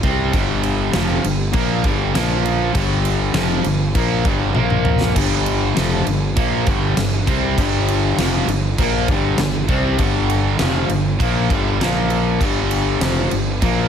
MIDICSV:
0, 0, Header, 1, 4, 480
1, 0, Start_track
1, 0, Tempo, 604230
1, 266, Time_signature, 4, 2, 24, 8
1, 11027, End_track
2, 0, Start_track
2, 0, Title_t, "Overdriven electric guitar"
2, 0, Program_c, 0, 29
2, 28, Note_on_c, 0, 48, 92
2, 34, Note_on_c, 0, 60, 95
2, 36, Note_on_c, 0, 55, 93
2, 259, Note_off_c, 0, 55, 0
2, 260, Note_off_c, 0, 48, 0
2, 262, Note_on_c, 0, 43, 86
2, 263, Note_off_c, 0, 60, 0
2, 269, Note_on_c, 0, 50, 91
2, 269, Note_on_c, 0, 55, 93
2, 735, Note_off_c, 0, 43, 0
2, 739, Note_off_c, 0, 50, 0
2, 739, Note_off_c, 0, 55, 0
2, 740, Note_on_c, 0, 41, 89
2, 746, Note_on_c, 0, 48, 92
2, 748, Note_on_c, 0, 53, 101
2, 974, Note_off_c, 0, 41, 0
2, 975, Note_off_c, 0, 48, 0
2, 977, Note_on_c, 0, 43, 66
2, 978, Note_off_c, 0, 53, 0
2, 978, Note_on_c, 0, 50, 78
2, 1172, Note_off_c, 0, 43, 0
2, 1172, Note_off_c, 0, 50, 0
2, 1209, Note_on_c, 0, 46, 84
2, 1212, Note_on_c, 0, 53, 97
2, 1219, Note_on_c, 0, 58, 99
2, 1448, Note_off_c, 0, 46, 0
2, 1450, Note_off_c, 0, 53, 0
2, 1453, Note_off_c, 0, 58, 0
2, 1453, Note_on_c, 0, 43, 86
2, 1459, Note_on_c, 0, 50, 101
2, 1461, Note_on_c, 0, 55, 102
2, 1689, Note_off_c, 0, 50, 0
2, 1690, Note_off_c, 0, 43, 0
2, 1691, Note_off_c, 0, 55, 0
2, 1692, Note_on_c, 0, 46, 97
2, 1695, Note_on_c, 0, 53, 93
2, 1700, Note_on_c, 0, 58, 95
2, 2166, Note_off_c, 0, 46, 0
2, 2167, Note_on_c, 0, 43, 96
2, 2170, Note_off_c, 0, 53, 0
2, 2170, Note_on_c, 0, 50, 99
2, 2172, Note_off_c, 0, 58, 0
2, 2174, Note_on_c, 0, 55, 109
2, 2644, Note_off_c, 0, 43, 0
2, 2646, Note_off_c, 0, 50, 0
2, 2647, Note_on_c, 0, 41, 89
2, 2648, Note_off_c, 0, 55, 0
2, 2651, Note_on_c, 0, 48, 95
2, 2657, Note_on_c, 0, 53, 93
2, 2885, Note_off_c, 0, 41, 0
2, 2887, Note_off_c, 0, 48, 0
2, 2890, Note_off_c, 0, 53, 0
2, 2890, Note_on_c, 0, 43, 65
2, 2894, Note_on_c, 0, 50, 78
2, 3086, Note_off_c, 0, 43, 0
2, 3088, Note_off_c, 0, 50, 0
2, 3135, Note_on_c, 0, 46, 83
2, 3140, Note_on_c, 0, 53, 100
2, 3140, Note_on_c, 0, 58, 100
2, 3369, Note_off_c, 0, 46, 0
2, 3371, Note_off_c, 0, 53, 0
2, 3371, Note_off_c, 0, 58, 0
2, 3372, Note_on_c, 0, 43, 84
2, 3375, Note_on_c, 0, 50, 92
2, 3380, Note_on_c, 0, 55, 89
2, 3603, Note_off_c, 0, 50, 0
2, 3603, Note_on_c, 0, 46, 90
2, 3607, Note_off_c, 0, 43, 0
2, 3610, Note_off_c, 0, 55, 0
2, 3610, Note_on_c, 0, 53, 89
2, 3617, Note_on_c, 0, 58, 106
2, 4081, Note_off_c, 0, 46, 0
2, 4085, Note_off_c, 0, 53, 0
2, 4088, Note_off_c, 0, 58, 0
2, 4093, Note_on_c, 0, 43, 85
2, 4095, Note_on_c, 0, 50, 95
2, 4099, Note_on_c, 0, 55, 100
2, 4565, Note_off_c, 0, 43, 0
2, 4567, Note_off_c, 0, 50, 0
2, 4568, Note_off_c, 0, 55, 0
2, 4574, Note_on_c, 0, 41, 92
2, 4576, Note_on_c, 0, 48, 91
2, 4580, Note_on_c, 0, 53, 106
2, 4806, Note_off_c, 0, 41, 0
2, 4807, Note_off_c, 0, 48, 0
2, 4809, Note_off_c, 0, 53, 0
2, 4812, Note_on_c, 0, 43, 64
2, 4818, Note_on_c, 0, 50, 79
2, 5004, Note_off_c, 0, 43, 0
2, 5007, Note_off_c, 0, 50, 0
2, 5055, Note_on_c, 0, 46, 89
2, 5055, Note_on_c, 0, 53, 94
2, 5057, Note_on_c, 0, 58, 97
2, 5286, Note_off_c, 0, 46, 0
2, 5286, Note_off_c, 0, 53, 0
2, 5287, Note_off_c, 0, 58, 0
2, 5295, Note_on_c, 0, 43, 93
2, 5296, Note_on_c, 0, 50, 91
2, 5299, Note_on_c, 0, 55, 98
2, 5526, Note_off_c, 0, 43, 0
2, 5526, Note_off_c, 0, 50, 0
2, 5528, Note_off_c, 0, 55, 0
2, 5536, Note_on_c, 0, 43, 64
2, 5542, Note_on_c, 0, 50, 74
2, 5726, Note_off_c, 0, 43, 0
2, 5729, Note_off_c, 0, 50, 0
2, 5771, Note_on_c, 0, 48, 89
2, 5780, Note_on_c, 0, 55, 93
2, 5780, Note_on_c, 0, 60, 105
2, 6004, Note_off_c, 0, 48, 0
2, 6008, Note_off_c, 0, 55, 0
2, 6008, Note_off_c, 0, 60, 0
2, 6018, Note_on_c, 0, 43, 93
2, 6026, Note_on_c, 0, 50, 92
2, 6028, Note_on_c, 0, 55, 99
2, 6487, Note_off_c, 0, 43, 0
2, 6491, Note_off_c, 0, 50, 0
2, 6492, Note_off_c, 0, 55, 0
2, 6499, Note_on_c, 0, 41, 90
2, 6505, Note_on_c, 0, 48, 102
2, 6506, Note_on_c, 0, 53, 105
2, 6728, Note_off_c, 0, 41, 0
2, 6731, Note_off_c, 0, 48, 0
2, 6731, Note_off_c, 0, 53, 0
2, 6742, Note_on_c, 0, 43, 78
2, 6748, Note_on_c, 0, 50, 82
2, 6929, Note_off_c, 0, 43, 0
2, 6931, Note_off_c, 0, 50, 0
2, 6985, Note_on_c, 0, 46, 95
2, 6988, Note_on_c, 0, 53, 89
2, 6993, Note_on_c, 0, 58, 106
2, 7211, Note_off_c, 0, 46, 0
2, 7213, Note_off_c, 0, 53, 0
2, 7215, Note_off_c, 0, 58, 0
2, 7221, Note_on_c, 0, 43, 96
2, 7226, Note_on_c, 0, 50, 100
2, 7227, Note_on_c, 0, 55, 96
2, 7449, Note_off_c, 0, 43, 0
2, 7451, Note_off_c, 0, 50, 0
2, 7452, Note_off_c, 0, 55, 0
2, 7461, Note_on_c, 0, 43, 71
2, 7465, Note_on_c, 0, 50, 73
2, 7648, Note_off_c, 0, 43, 0
2, 7650, Note_off_c, 0, 50, 0
2, 7698, Note_on_c, 0, 48, 92
2, 7702, Note_on_c, 0, 55, 93
2, 7702, Note_on_c, 0, 60, 96
2, 7928, Note_off_c, 0, 48, 0
2, 7928, Note_off_c, 0, 55, 0
2, 7930, Note_off_c, 0, 60, 0
2, 7931, Note_on_c, 0, 43, 94
2, 7933, Note_on_c, 0, 50, 105
2, 7937, Note_on_c, 0, 55, 102
2, 8405, Note_off_c, 0, 43, 0
2, 8406, Note_off_c, 0, 50, 0
2, 8408, Note_off_c, 0, 55, 0
2, 8411, Note_on_c, 0, 41, 89
2, 8412, Note_on_c, 0, 48, 101
2, 8417, Note_on_c, 0, 53, 103
2, 8645, Note_off_c, 0, 41, 0
2, 8646, Note_off_c, 0, 48, 0
2, 8648, Note_off_c, 0, 53, 0
2, 8650, Note_on_c, 0, 43, 74
2, 8653, Note_on_c, 0, 50, 77
2, 8844, Note_off_c, 0, 43, 0
2, 8845, Note_off_c, 0, 50, 0
2, 8894, Note_on_c, 0, 46, 89
2, 8899, Note_on_c, 0, 53, 93
2, 8903, Note_on_c, 0, 58, 101
2, 9128, Note_off_c, 0, 46, 0
2, 9130, Note_off_c, 0, 53, 0
2, 9132, Note_off_c, 0, 58, 0
2, 9136, Note_on_c, 0, 43, 101
2, 9142, Note_on_c, 0, 50, 108
2, 9146, Note_on_c, 0, 55, 101
2, 9369, Note_off_c, 0, 43, 0
2, 9372, Note_off_c, 0, 50, 0
2, 9374, Note_off_c, 0, 55, 0
2, 9378, Note_on_c, 0, 46, 96
2, 9385, Note_on_c, 0, 53, 101
2, 9391, Note_on_c, 0, 58, 120
2, 9851, Note_off_c, 0, 46, 0
2, 9855, Note_off_c, 0, 53, 0
2, 9858, Note_off_c, 0, 58, 0
2, 9860, Note_on_c, 0, 43, 90
2, 9865, Note_on_c, 0, 50, 97
2, 9866, Note_on_c, 0, 55, 96
2, 10331, Note_off_c, 0, 43, 0
2, 10334, Note_on_c, 0, 41, 88
2, 10335, Note_off_c, 0, 50, 0
2, 10337, Note_off_c, 0, 55, 0
2, 10338, Note_on_c, 0, 48, 97
2, 10340, Note_on_c, 0, 53, 103
2, 10571, Note_off_c, 0, 41, 0
2, 10573, Note_off_c, 0, 48, 0
2, 10574, Note_off_c, 0, 53, 0
2, 10578, Note_on_c, 0, 43, 69
2, 10581, Note_on_c, 0, 50, 76
2, 10773, Note_off_c, 0, 43, 0
2, 10774, Note_off_c, 0, 50, 0
2, 10822, Note_on_c, 0, 46, 85
2, 10825, Note_on_c, 0, 53, 98
2, 10830, Note_on_c, 0, 58, 104
2, 11027, Note_off_c, 0, 46, 0
2, 11027, Note_off_c, 0, 53, 0
2, 11027, Note_off_c, 0, 58, 0
2, 11027, End_track
3, 0, Start_track
3, 0, Title_t, "Fingered electric bass"
3, 0, Program_c, 1, 33
3, 28, Note_on_c, 1, 36, 97
3, 250, Note_off_c, 1, 36, 0
3, 269, Note_on_c, 1, 31, 89
3, 714, Note_off_c, 1, 31, 0
3, 742, Note_on_c, 1, 29, 95
3, 966, Note_off_c, 1, 29, 0
3, 982, Note_on_c, 1, 31, 79
3, 1206, Note_off_c, 1, 31, 0
3, 1221, Note_on_c, 1, 34, 90
3, 1445, Note_off_c, 1, 34, 0
3, 1468, Note_on_c, 1, 31, 93
3, 1688, Note_off_c, 1, 31, 0
3, 1700, Note_on_c, 1, 34, 84
3, 2147, Note_off_c, 1, 34, 0
3, 2183, Note_on_c, 1, 31, 90
3, 2628, Note_off_c, 1, 31, 0
3, 2651, Note_on_c, 1, 29, 92
3, 2877, Note_off_c, 1, 29, 0
3, 2897, Note_on_c, 1, 31, 78
3, 3120, Note_off_c, 1, 31, 0
3, 3136, Note_on_c, 1, 34, 92
3, 3359, Note_off_c, 1, 34, 0
3, 3380, Note_on_c, 1, 31, 91
3, 3601, Note_off_c, 1, 31, 0
3, 3614, Note_on_c, 1, 34, 80
3, 4062, Note_off_c, 1, 34, 0
3, 4098, Note_on_c, 1, 31, 89
3, 4543, Note_off_c, 1, 31, 0
3, 4583, Note_on_c, 1, 29, 90
3, 4802, Note_off_c, 1, 29, 0
3, 4817, Note_on_c, 1, 31, 78
3, 5038, Note_off_c, 1, 31, 0
3, 5059, Note_on_c, 1, 34, 90
3, 5279, Note_off_c, 1, 34, 0
3, 5299, Note_on_c, 1, 31, 84
3, 5518, Note_off_c, 1, 31, 0
3, 5536, Note_on_c, 1, 31, 65
3, 5757, Note_off_c, 1, 31, 0
3, 5782, Note_on_c, 1, 36, 99
3, 6000, Note_off_c, 1, 36, 0
3, 6019, Note_on_c, 1, 31, 96
3, 6463, Note_off_c, 1, 31, 0
3, 6484, Note_on_c, 1, 29, 92
3, 6710, Note_off_c, 1, 29, 0
3, 6730, Note_on_c, 1, 31, 79
3, 6953, Note_off_c, 1, 31, 0
3, 6983, Note_on_c, 1, 34, 86
3, 7201, Note_off_c, 1, 34, 0
3, 7217, Note_on_c, 1, 31, 99
3, 7437, Note_off_c, 1, 31, 0
3, 7451, Note_on_c, 1, 31, 73
3, 7674, Note_off_c, 1, 31, 0
3, 7699, Note_on_c, 1, 36, 98
3, 7919, Note_off_c, 1, 36, 0
3, 7939, Note_on_c, 1, 31, 93
3, 8385, Note_off_c, 1, 31, 0
3, 8414, Note_on_c, 1, 29, 102
3, 8637, Note_off_c, 1, 29, 0
3, 8651, Note_on_c, 1, 31, 76
3, 8876, Note_off_c, 1, 31, 0
3, 8897, Note_on_c, 1, 34, 92
3, 9119, Note_off_c, 1, 34, 0
3, 9136, Note_on_c, 1, 31, 91
3, 9360, Note_off_c, 1, 31, 0
3, 9363, Note_on_c, 1, 34, 85
3, 9819, Note_off_c, 1, 34, 0
3, 9859, Note_on_c, 1, 31, 93
3, 10309, Note_off_c, 1, 31, 0
3, 10327, Note_on_c, 1, 29, 95
3, 10557, Note_off_c, 1, 29, 0
3, 10582, Note_on_c, 1, 31, 76
3, 10806, Note_off_c, 1, 31, 0
3, 10821, Note_on_c, 1, 34, 87
3, 11027, Note_off_c, 1, 34, 0
3, 11027, End_track
4, 0, Start_track
4, 0, Title_t, "Drums"
4, 26, Note_on_c, 9, 36, 97
4, 27, Note_on_c, 9, 49, 56
4, 105, Note_off_c, 9, 36, 0
4, 106, Note_off_c, 9, 49, 0
4, 264, Note_on_c, 9, 49, 75
4, 266, Note_on_c, 9, 36, 106
4, 344, Note_off_c, 9, 49, 0
4, 345, Note_off_c, 9, 36, 0
4, 504, Note_on_c, 9, 49, 60
4, 583, Note_off_c, 9, 49, 0
4, 743, Note_on_c, 9, 38, 115
4, 743, Note_on_c, 9, 49, 82
4, 822, Note_off_c, 9, 38, 0
4, 822, Note_off_c, 9, 49, 0
4, 988, Note_on_c, 9, 49, 66
4, 1068, Note_off_c, 9, 49, 0
4, 1218, Note_on_c, 9, 49, 83
4, 1223, Note_on_c, 9, 36, 100
4, 1298, Note_off_c, 9, 49, 0
4, 1302, Note_off_c, 9, 36, 0
4, 1461, Note_on_c, 9, 49, 58
4, 1464, Note_on_c, 9, 36, 93
4, 1541, Note_off_c, 9, 49, 0
4, 1544, Note_off_c, 9, 36, 0
4, 1710, Note_on_c, 9, 38, 106
4, 1710, Note_on_c, 9, 49, 84
4, 1790, Note_off_c, 9, 38, 0
4, 1790, Note_off_c, 9, 49, 0
4, 1950, Note_on_c, 9, 49, 63
4, 2030, Note_off_c, 9, 49, 0
4, 2183, Note_on_c, 9, 49, 82
4, 2184, Note_on_c, 9, 36, 99
4, 2263, Note_off_c, 9, 36, 0
4, 2263, Note_off_c, 9, 49, 0
4, 2423, Note_on_c, 9, 49, 64
4, 2502, Note_off_c, 9, 49, 0
4, 2655, Note_on_c, 9, 38, 114
4, 2655, Note_on_c, 9, 49, 88
4, 2734, Note_off_c, 9, 38, 0
4, 2734, Note_off_c, 9, 49, 0
4, 2895, Note_on_c, 9, 49, 62
4, 2974, Note_off_c, 9, 49, 0
4, 3137, Note_on_c, 9, 49, 80
4, 3139, Note_on_c, 9, 36, 100
4, 3216, Note_off_c, 9, 49, 0
4, 3218, Note_off_c, 9, 36, 0
4, 3375, Note_on_c, 9, 49, 54
4, 3377, Note_on_c, 9, 36, 99
4, 3454, Note_off_c, 9, 49, 0
4, 3457, Note_off_c, 9, 36, 0
4, 3612, Note_on_c, 9, 48, 60
4, 3691, Note_off_c, 9, 48, 0
4, 3736, Note_on_c, 9, 47, 67
4, 3815, Note_off_c, 9, 47, 0
4, 3853, Note_on_c, 9, 45, 90
4, 3932, Note_off_c, 9, 45, 0
4, 3980, Note_on_c, 9, 38, 91
4, 4059, Note_off_c, 9, 38, 0
4, 4099, Note_on_c, 9, 36, 100
4, 4100, Note_on_c, 9, 49, 98
4, 4178, Note_off_c, 9, 36, 0
4, 4179, Note_off_c, 9, 49, 0
4, 4339, Note_on_c, 9, 49, 60
4, 4418, Note_off_c, 9, 49, 0
4, 4582, Note_on_c, 9, 38, 110
4, 4582, Note_on_c, 9, 49, 82
4, 4662, Note_off_c, 9, 38, 0
4, 4662, Note_off_c, 9, 49, 0
4, 4819, Note_on_c, 9, 49, 59
4, 4899, Note_off_c, 9, 49, 0
4, 5057, Note_on_c, 9, 49, 76
4, 5059, Note_on_c, 9, 36, 101
4, 5136, Note_off_c, 9, 49, 0
4, 5139, Note_off_c, 9, 36, 0
4, 5295, Note_on_c, 9, 49, 59
4, 5298, Note_on_c, 9, 36, 93
4, 5374, Note_off_c, 9, 49, 0
4, 5378, Note_off_c, 9, 36, 0
4, 5538, Note_on_c, 9, 38, 98
4, 5538, Note_on_c, 9, 49, 77
4, 5618, Note_off_c, 9, 38, 0
4, 5618, Note_off_c, 9, 49, 0
4, 5778, Note_on_c, 9, 36, 99
4, 5782, Note_on_c, 9, 49, 64
4, 5858, Note_off_c, 9, 36, 0
4, 5861, Note_off_c, 9, 49, 0
4, 6020, Note_on_c, 9, 36, 102
4, 6022, Note_on_c, 9, 49, 86
4, 6099, Note_off_c, 9, 36, 0
4, 6102, Note_off_c, 9, 49, 0
4, 6263, Note_on_c, 9, 49, 65
4, 6343, Note_off_c, 9, 49, 0
4, 6503, Note_on_c, 9, 38, 122
4, 6503, Note_on_c, 9, 49, 90
4, 6582, Note_off_c, 9, 38, 0
4, 6582, Note_off_c, 9, 49, 0
4, 6740, Note_on_c, 9, 49, 59
4, 6820, Note_off_c, 9, 49, 0
4, 6977, Note_on_c, 9, 49, 75
4, 6978, Note_on_c, 9, 36, 104
4, 7056, Note_off_c, 9, 49, 0
4, 7058, Note_off_c, 9, 36, 0
4, 7214, Note_on_c, 9, 49, 58
4, 7217, Note_on_c, 9, 36, 104
4, 7293, Note_off_c, 9, 49, 0
4, 7296, Note_off_c, 9, 36, 0
4, 7451, Note_on_c, 9, 38, 107
4, 7451, Note_on_c, 9, 49, 69
4, 7531, Note_off_c, 9, 38, 0
4, 7531, Note_off_c, 9, 49, 0
4, 7693, Note_on_c, 9, 49, 54
4, 7695, Note_on_c, 9, 36, 103
4, 7772, Note_off_c, 9, 49, 0
4, 7775, Note_off_c, 9, 36, 0
4, 7932, Note_on_c, 9, 49, 73
4, 7936, Note_on_c, 9, 36, 95
4, 8012, Note_off_c, 9, 49, 0
4, 8016, Note_off_c, 9, 36, 0
4, 8180, Note_on_c, 9, 49, 57
4, 8259, Note_off_c, 9, 49, 0
4, 8414, Note_on_c, 9, 38, 113
4, 8414, Note_on_c, 9, 49, 77
4, 8493, Note_off_c, 9, 38, 0
4, 8493, Note_off_c, 9, 49, 0
4, 8655, Note_on_c, 9, 49, 59
4, 8734, Note_off_c, 9, 49, 0
4, 8897, Note_on_c, 9, 36, 107
4, 8903, Note_on_c, 9, 49, 82
4, 8977, Note_off_c, 9, 36, 0
4, 8982, Note_off_c, 9, 49, 0
4, 9137, Note_on_c, 9, 36, 102
4, 9139, Note_on_c, 9, 49, 56
4, 9217, Note_off_c, 9, 36, 0
4, 9219, Note_off_c, 9, 49, 0
4, 9384, Note_on_c, 9, 38, 103
4, 9384, Note_on_c, 9, 49, 73
4, 9463, Note_off_c, 9, 38, 0
4, 9463, Note_off_c, 9, 49, 0
4, 9613, Note_on_c, 9, 49, 56
4, 9693, Note_off_c, 9, 49, 0
4, 9856, Note_on_c, 9, 36, 96
4, 9860, Note_on_c, 9, 49, 79
4, 9936, Note_off_c, 9, 36, 0
4, 9939, Note_off_c, 9, 49, 0
4, 10096, Note_on_c, 9, 49, 68
4, 10175, Note_off_c, 9, 49, 0
4, 10338, Note_on_c, 9, 38, 115
4, 10338, Note_on_c, 9, 49, 90
4, 10417, Note_off_c, 9, 38, 0
4, 10417, Note_off_c, 9, 49, 0
4, 10576, Note_on_c, 9, 49, 64
4, 10655, Note_off_c, 9, 49, 0
4, 10818, Note_on_c, 9, 49, 78
4, 10820, Note_on_c, 9, 36, 107
4, 10898, Note_off_c, 9, 49, 0
4, 10900, Note_off_c, 9, 36, 0
4, 11027, End_track
0, 0, End_of_file